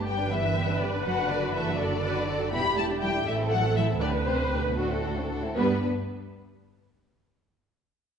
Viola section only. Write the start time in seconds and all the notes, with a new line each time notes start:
Already playing: G4
0.31 B4
1.78 A4
2.02 B4
2.27 A4
2.51 G4
3.25 A4
4.00 B4
4.78 F#4
5.56 G3 B3